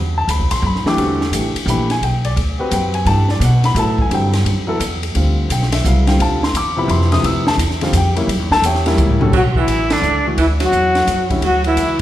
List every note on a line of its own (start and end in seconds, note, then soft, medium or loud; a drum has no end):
0.00 0.27 E2 medium
0.00 0.13 B5 loud
0.18 0.29 A5 medium
0.28 0.41 D2 medium
0.28 0.51 B5 medium
0.28 hi-hat pedal soft
0.28 ride medium
0.40 0.51 C2 medium
0.51 0.62 A1 medium
0.51 0.63 C6 loud
0.51 ride medium
0.62 0.83 F#2 loud
0.66 0.86 B5 medium
0.76 snare soft
0.84 1.30 E3 medium
0.84 1.30 A3 medium
0.84 1.31 D4 medium
0.84 1.31 G4 medium
0.84 1.30 D6 medium
0.84 muted upright bass stroke soft
0.84 snare soft
0.97 1.31 E2 medium
0.97 1.18 D3 medium
0.97 1.18 G3 soft
0.97 1.19 C4 medium
0.97 1.19 F#4 medium
0.97 ride medium
1.21 snare soft
1.31 1.53 A1 medium
1.31 1.53 E3 medium
1.31 1.53 A3 soft
1.31 1.53 D4 soft
1.31 1.54 G4 medium
1.31 hi-hat pedal medium
1.31 ride medium
1.55 muted upright bass stroke soft
1.55 ride medium
1.66 2.00 A#1 loud
1.66 1.88 E3 medium
1.66 1.88 A3 medium
1.66 1.88 D4 medium
1.66 1.88 G4 medium
1.66 1.90 B5 medium
1.66 hi-hat pedal medium
1.90 2.02 G#5 medium
1.90 snare soft
1.90 ride soft
2.01 2.35 B1 medium
2.01 2.25 G5 medium
2.01 ride medium
2.24 2.32 D5 medium
2.24 ride soft
2.36 2.70 D2 medium
2.36 ride medium
2.59 3.04 C4 medium
2.59 3.04 F#4 medium
2.59 3.04 G4 medium
2.59 3.04 B4 medium
2.69 3.05 F#2 medium
2.69 2.72 F#5 medium
2.69 hi-hat pedal medium
2.69 ride medium
2.74 2.95 G5 medium
2.94 3.06 G#5 medium
2.94 ride soft
3.05 3.39 G2 medium
3.05 3.27 E3 medium
3.05 3.27 A3 medium
3.05 3.27 D4 medium
3.05 3.28 G4 medium
3.05 3.29 A5 medium
3.05 ride medium
3.29 3.42 D5 medium
3.29 snare soft
3.40 3.74 B2 loud
3.40 hi-hat pedal medium
3.40 ride medium
3.44 3.65 F#5 medium
3.64 3.76 B5 loud
3.64 snare soft
3.64 ride soft
3.74 4.09 A2 loud
3.74 4.11 F#3 medium
3.74 4.29 B3 medium
3.74 4.29 E4 medium
3.74 4.30 A4 medium
3.74 hi-hat pedal medium
3.74 ride medium
3.79 4.00 A5 medium
3.98 4.12 G#5 medium
3.98 kick medium
4.09 4.44 G2 medium
4.09 4.63 D3 medium
4.09 4.64 F#3 medium
4.09 4.64 G3 medium
4.09 4.64 C4 medium
4.09 ride medium
4.14 5.13 G5 medium
4.33 snare soft
4.33 ride medium
4.44 4.79 F#2 medium
4.44 ride medium
4.67 4.79 F#3 medium
4.67 4.79 B3 medium
4.67 4.79 E4 medium
4.67 4.79 A4 medium
4.79 5.14 E2 medium
4.79 hi-hat pedal medium
4.79 ride medium
5.03 ride medium
5.15 5.49 D2 medium
5.15 5.68 D3 medium
5.15 5.68 G3 soft
5.15 5.68 C4 medium
5.15 5.69 F4 medium
5.15 ride medium
5.49 5.83 B1 medium
5.49 5.73 G5 medium
5.49 hi-hat pedal medium
5.49 ride medium
5.62 snare soft
5.72 5.84 E5 medium
5.72 snare medium
5.72 ride medium
5.85 6.18 C2 loud
5.85 6.05 C#3 medium
5.85 6.05 F#3 soft
5.85 6.06 B3 medium
5.85 6.06 E4 medium
5.85 6.07 F5 medium
5.85 hi-hat pedal medium
6.07 6.18 D3 medium
6.07 6.18 G3 medium
6.07 6.19 C4 medium
6.07 6.19 F4 medium
6.07 6.20 G5 medium
6.07 snare medium
6.07 ride soft
6.19 6.53 D2 medium
6.19 6.40 D3 medium
6.19 6.40 G3 medium
6.19 6.40 C4 medium
6.19 6.40 F4 medium
6.19 6.43 A5 medium
6.19 ride medium
6.43 6.55 C6 loud
6.43 snare medium
6.53 6.88 E2 medium
6.53 6.78 D6 loud
6.53 hi-hat pedal medium
6.53 ride medium
6.77 7.09 C3 medium
6.77 7.10 F3 medium
6.77 7.10 B3 medium
6.77 7.10 E4 medium
6.77 6.90 B5 medium
6.88 7.22 F2 loud
6.88 7.12 C6 medium
6.88 ride medium
7.01 snare soft
7.12 7.56 C3 medium
7.12 7.57 F3 medium
7.12 7.57 B3 medium
7.12 7.57 E4 medium
7.12 7.24 D#6 loud
7.12 snare medium
7.12 ride soft
7.23 7.57 D2 medium
7.23 7.46 E6 medium
7.23 ride medium
7.47 7.55 A5 loud
7.47 snare medium
7.57 7.92 E2 medium
7.57 hi-hat pedal medium
7.57 ride medium
7.71 snare soft
7.81 7.92 D3 medium
7.81 7.92 G3 medium
7.81 7.93 C4 medium
7.81 7.93 F4 medium
7.81 snare medium
7.81 ride medium
7.93 8.27 F2 loud
7.93 hi-hat pedal medium
7.93 ride medium
7.97 8.49 G4 medium
7.97 8.49 G5 medium
8.16 8.27 G3 medium
8.16 8.27 A#3 medium
8.16 8.27 C#4 medium
8.16 8.28 E4 medium
8.16 ride medium
8.27 8.39 F#2 medium
8.27 ride medium
8.39 8.50 E2 medium
8.50 8.62 C#2 medium
8.50 8.64 A4 medium
8.50 8.63 A5 loud
8.50 snare medium
8.62 8.97 E2 medium
8.62 8.97 G4 medium
8.62 8.97 C#5 medium
8.62 8.97 E5 medium
8.62 8.97 G5 medium
8.62 hi-hat pedal medium
8.62 ride medium
8.75 snare soft
8.86 9.18 G3 medium
8.86 9.19 A#3 medium
8.86 9.19 C#4 medium
8.86 9.19 E4 loud
8.86 snare soft
8.86 ride medium
8.97 9.31 C#2 loud
8.97 hi-hat pedal medium
8.97 mid tom medium
9.09 floor tom medium
9.21 9.32 D3 medium
9.21 9.32 G3 medium
9.21 9.32 C#4 medium
9.21 9.32 F#4 medium
9.21 9.33 A4 medium
9.21 floor tom loud
9.33 9.66 B1 medium
9.33 9.43 F#3 medium
9.33 9.42 F#4 loud
9.33 kick medium
9.33 crash medium
9.55 9.92 E3 medium
9.55 9.94 E4 medium
9.55 kick medium
9.67 10.01 A1 medium
9.67 hi-hat pedal soft
9.67 ride medium
9.90 10.25 D3 medium
9.90 10.26 D4 loud
9.90 snare medium
9.90 ride medium
10.02 10.36 C#2 medium
10.02 hi-hat pedal soft
10.25 10.36 E3 medium
10.25 10.37 A3 medium
10.25 10.37 D4 medium
10.25 10.37 F#4 medium
10.37 10.71 D2 medium
10.37 10.48 E3 medium
10.37 10.45 E4 medium
10.37 ride medium
10.60 11.26 F#3 medium
10.60 11.27 F#4 loud
10.60 snare soft
10.60 ride medium
10.72 11.06 E2 medium
10.72 hi-hat pedal medium
10.95 snare soft
10.95 ride soft
11.07 11.41 F#2 medium
11.07 hi-hat pedal medium
11.07 ride medium
11.30 11.41 D3 medium
11.30 11.41 G3 medium
11.30 11.41 C#4 medium
11.30 11.42 E4 medium
11.30 kick soft
11.30 ride soft
11.41 11.76 D2 medium
11.41 11.64 F#3 medium
11.41 11.64 F#4 loud
11.41 ride medium
11.64 11.98 E3 medium
11.64 11.98 E4 medium
11.64 ride soft
11.77 12.02 C#2 medium
11.77 hi-hat pedal medium
11.77 ride medium